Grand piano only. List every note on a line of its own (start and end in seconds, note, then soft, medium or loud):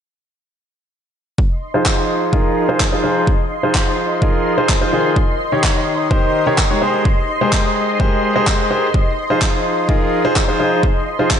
1.74 2.30 F3 medium
1.74 2.30 D#4 medium
1.74 2.30 F4 medium
1.74 2.30 G#4 medium
1.74 2.30 C5 medium
2.33 2.66 F3 medium
2.33 2.66 D#4 medium
2.33 2.66 F4 medium
2.33 2.66 G#4 medium
2.33 2.66 A#4 loud
2.69 2.84 F3 medium
2.69 2.84 D#4 medium
2.69 2.84 F4 medium
2.69 2.84 G#4 medium
2.69 2.84 C5 loud
2.92 3.02 F3 medium
2.92 3.02 D#4 medium
2.92 3.02 F4 medium
2.92 3.02 G#4 medium
2.92 3.02 C5 medium
3.04 3.28 F3 medium
3.04 3.28 D#4 medium
3.04 3.28 F4 medium
3.04 3.28 G#4 medium
3.04 3.28 C5 medium
3.63 4.19 F3 medium
3.63 4.19 D#4 medium
3.63 4.19 F4 medium
3.63 4.19 G#4 medium
3.63 4.19 C5 medium
4.22 4.55 F3 medium
4.22 4.55 D#4 medium
4.22 4.55 F4 medium
4.22 4.55 G#4 medium
4.22 4.55 A#4 loud
4.58 4.73 F3 medium
4.58 4.73 D#4 medium
4.58 4.73 F4 medium
4.58 4.73 G#4 medium
4.58 4.73 C5 loud
4.81 4.91 F3 medium
4.81 4.91 D#4 medium
4.81 4.91 F4 medium
4.81 4.91 G#4 medium
4.81 4.91 C5 medium
4.93 5.15 D#3 medium
4.93 5.15 D#4 medium
4.93 5.15 F4 medium
4.93 5.15 G#4 medium
4.93 5.15 C5 medium
5.52 6.08 D#3 medium
5.52 6.08 D#4 medium
5.52 6.08 G4 medium
5.52 6.08 A#4 medium
5.52 6.08 C#5 medium
6.11 6.44 D#3 medium
6.11 6.44 D#4 medium
6.11 6.44 G4 medium
6.11 6.44 A#4 medium
6.11 6.44 C5 loud
6.47 6.62 D#3 medium
6.47 6.62 D#4 medium
6.47 6.62 G4 medium
6.47 6.62 A#4 medium
6.47 6.62 C#5 loud
6.70 6.80 G#3 medium
6.70 6.80 D#4 medium
6.70 6.80 G4 medium
6.70 6.80 A#4 medium
6.70 6.80 C#5 medium
6.82 7.06 G#3 medium
6.82 7.06 G4 medium
6.82 7.06 G#4 medium
6.82 7.06 A#4 medium
6.82 7.06 C5 medium
7.41 7.97 G#3 medium
7.41 7.97 G4 medium
7.41 7.97 G#4 medium
7.41 7.97 A#4 medium
7.41 7.97 C5 medium
8.00 8.33 G#3 medium
8.00 8.33 G4 medium
8.00 8.33 G#4 medium
8.00 8.33 A#4 medium
8.00 8.33 C5 loud
8.36 8.68 G#3 medium
8.36 8.68 G4 medium
8.36 8.68 G#4 medium
8.36 8.68 A#4 medium
8.36 8.68 C5 loud
8.71 8.86 G4 medium
8.71 8.86 G#4 medium
8.71 8.86 A#4 medium
8.71 8.86 C5 medium
9.30 9.86 F3 medium
9.30 9.86 D#4 medium
9.30 9.86 F4 medium
9.30 9.86 G#4 medium
9.30 9.86 C5 medium
9.89 10.22 F3 medium
9.89 10.22 D#4 medium
9.89 10.22 F4 medium
9.89 10.22 G#4 medium
9.89 10.22 A#4 loud
10.25 10.39 F3 medium
10.25 10.39 D#4 medium
10.25 10.40 F4 medium
10.25 10.40 G#4 medium
10.25 10.40 C5 loud
10.48 10.58 F3 medium
10.48 10.58 D#4 medium
10.48 10.58 F4 medium
10.48 10.58 G#4 medium
10.48 10.58 C5 medium
10.60 10.84 F3 medium
10.60 10.84 D#4 medium
10.60 10.84 F4 medium
10.60 10.84 G#4 medium
10.60 10.84 C5 medium
11.19 11.40 F3 medium
11.19 11.40 D#4 medium
11.19 11.40 F4 medium
11.19 11.40 G#4 medium
11.19 11.40 C5 medium